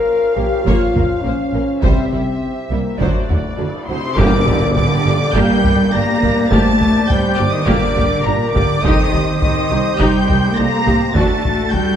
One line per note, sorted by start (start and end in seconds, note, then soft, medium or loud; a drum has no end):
0.00 1.83 C#4 medium
0.00 1.79 F4 medium
0.00 0.36 A#4 loud
0.00 3.85 C5 medium
0.00 1.79 F5 medium
0.36 0.46 A#1 medium
0.36 0.44 A#2 medium
0.36 0.45 A#3 medium
0.36 0.66 G4 medium
0.36 0.44 A#4 medium
0.64 0.74 A#1 medium
0.64 0.74 A#2 medium
0.64 0.93 A#3 medium
0.64 1.23 F4 medium
0.64 0.93 C#5 medium
0.64 taiko medium
0.95 1.03 A#1 medium
0.95 1.03 A#2 medium
0.95 1.04 A#3 medium
0.95 1.04 A#4 soft
0.95 taiko low-mid soft
1.22 1.33 A#1 medium
1.22 1.32 A#2 medium
1.22 1.32 A#3 medium
1.22 1.81 C#4 medium
1.26 1.34 C5 medium
1.53 1.61 A#1 soft
1.53 1.61 A#2 soft
1.53 1.62 A#3 medium
1.53 1.63 A#4 medium
1.82 1.91 C2 medium
1.82 1.91 C3 medium
1.82 2.10 G3 medium
1.82 2.53 C4 medium
1.82 3.00 C4 medium
1.82 3.00 G4 medium
1.82 2.10 C5 medium
1.82 2.97 E5 medium
1.82 3.00 E5 medium
1.82 taiko medium
2.12 2.20 C2 soft
2.12 2.21 C3 soft
2.12 2.20 G3 soft
2.12 2.21 E4 soft
2.70 2.78 C2 soft
2.70 2.78 C3 soft
2.70 2.79 G3 soft
2.70 2.99 A#3 medium
2.70 2.80 E4 soft
2.99 3.08 D2 medium
2.99 3.08 D3 medium
2.99 3.27 F#3 medium
2.99 3.58 A3 medium
2.99 3.88 D4 medium
2.99 3.88 F#4 medium
2.99 3.28 C5 medium
2.99 3.88 D5 medium
2.99 taiko medium
3.29 3.37 D2 medium
3.29 3.38 D3 soft
3.29 3.37 F#3 medium
3.29 3.37 F#4 soft
3.29 taiko low-mid soft
3.57 3.66 D2 medium
3.57 3.68 D3 soft
3.57 3.66 F#3 medium
3.57 3.65 A4 soft
3.87 3.97 D2 soft
3.87 4.16 C3 medium
3.87 3.97 D3 soft
3.87 3.97 F#3 medium
3.87 3.96 F#4 soft
3.87 4.16 C5 medium
3.87 4.15 C6 medium
4.16 4.25 G1 medium
4.16 5.02 G2 loud
4.16 4.76 D3 medium
4.16 4.45 A#3 medium
4.16 8.80 D4 medium
4.16 4.45 G4 medium
4.16 8.80 G4 loud
4.16 4.72 A#4 medium
4.16 4.74 D5 medium
4.16 8.80 D5 medium
4.16 4.74 D6 loud
4.16 taiko loud
4.16 tam-tam medium
4.47 taiko low medium
4.75 5.34 D3 medium
4.75 5.05 G4 medium
4.75 5.33 D5 medium
4.75 5.33 D6 loud
4.75 taiko low medium
5.05 5.13 G1 medium
5.05 5.15 A#3 medium
5.05 5.15 G4 medium
5.05 5.34 A4 medium
5.34 5.43 G1 medium
5.34 5.92 G3 medium
5.34 5.62 A#3 loud
5.34 5.62 G4 medium
5.34 5.93 A#4 medium
5.34 5.93 G5 medium
5.34 5.92 G6 loud
5.34 taiko medium
5.64 5.72 G1 medium
5.64 5.72 A#3 medium
5.64 5.72 G4 medium
5.64 taiko low medium
5.92 6.02 G1 medium
5.92 6.02 G3 medium
5.92 6.51 A#3 medium
5.92 6.02 D4 medium
5.92 6.22 G4 medium
5.92 6.50 A#5 medium
5.92 6.51 A#6 loud
6.20 6.31 G1 medium
6.20 6.31 A#3 medium
6.20 6.31 G4 medium
6.20 6.50 A#4 medium
6.20 taiko low medium
6.49 6.60 G1 medium
6.49 7.09 A3 medium
6.49 6.79 A#3 medium
6.49 6.79 G4 medium
6.49 6.78 C5 medium
6.49 7.08 A5 loud
6.49 7.07 A6 loud
6.49 taiko loud
6.79 7.08 A#4 medium
6.79 taiko low medium
7.07 7.38 G3 medium
7.07 7.65 C5 medium
7.07 7.38 G5 medium
7.07 7.37 G6 loud
7.07 taiko low medium
7.36 7.46 G1 medium
7.36 7.52 D3 medium
7.36 7.47 A#3 medium
7.36 7.46 G4 medium
7.36 7.53 D5 medium
7.36 7.52 D6 loud
7.51 7.67 D#3 medium
7.51 7.67 D#5 medium
7.51 7.67 D#6 medium
7.64 7.75 G1 medium
7.64 8.25 D3 medium
7.64 7.94 A#3 medium
7.64 7.94 G4 medium
7.64 8.82 A#4 medium
7.64 8.24 D5 medium
7.64 8.25 D6 medium
7.64 taiko medium
7.97 8.05 G1 medium
7.97 8.05 A#3 medium
7.97 8.05 G4 medium
7.97 taiko low medium
8.24 8.34 G1 medium
8.24 8.55 A#2 medium
8.24 8.35 G3 medium
8.24 8.35 D4 medium
8.24 8.54 A#4 medium
8.24 8.54 A#5 loud
8.53 8.63 G1 medium
8.53 8.83 D3 medium
8.53 8.64 A#3 medium
8.53 8.63 G4 medium
8.53 8.82 D5 medium
8.53 8.82 D6 medium
8.53 taiko low medium
8.82 8.91 C2 medium
8.82 9.40 D#3 medium
8.82 11.14 C4 medium
8.82 9.11 D#4 medium
8.82 11.10 G4 medium
8.82 9.11 G4 medium
8.82 9.11 A4 medium
8.82 11.14 C5 medium
8.82 9.39 D#5 medium
8.82 9.39 D#6 loud
8.82 taiko medium
9.12 9.40 G4 medium
9.12 taiko low soft
9.40 9.98 D#3 medium
9.40 9.97 G4 medium
9.40 9.97 D#5 medium
9.40 9.97 D#6 loud
9.40 taiko low medium
9.70 9.78 C2 medium
9.70 9.79 D#4 medium
9.70 9.79 G4 medium
9.97 10.07 C2 medium
9.97 10.56 G3 medium
9.97 10.26 D#4 medium
9.97 10.26 G4 medium
9.97 10.26 C5 medium
9.97 10.56 G5 medium
9.97 10.56 G6 loud
9.97 taiko medium
10.25 10.37 C2 medium
10.25 10.37 D#4 medium
10.25 10.37 G4 medium
10.25 10.55 A#4 medium
10.29 taiko low medium
10.56 10.65 C2 medium
10.56 11.15 A#3 medium
10.56 10.66 D4 medium
10.56 10.66 D#4 medium
10.56 10.85 A4 medium
10.56 11.14 A#5 loud
10.56 11.14 A#6 loud
10.83 10.93 C2 medium
10.83 10.95 D#4 medium
10.83 11.13 G4 medium
10.83 10.95 G4 medium
10.83 taiko low medium
11.11 11.23 D2 medium
11.11 11.71 A3 medium
11.11 11.39 F#4 medium
11.11 11.96 F#4 medium
11.11 11.96 A4 medium
11.11 11.71 A5 medium
11.11 11.72 A6 medium
11.15 11.96 D4 medium
11.15 11.42 D4 medium
11.15 11.42 F#4 medium
11.15 taiko medium
11.40 11.96 F#4 medium
11.45 taiko low medium
11.71 11.96 G3 medium
11.71 11.96 G5 medium
11.71 11.96 G6 loud
11.71 taiko low medium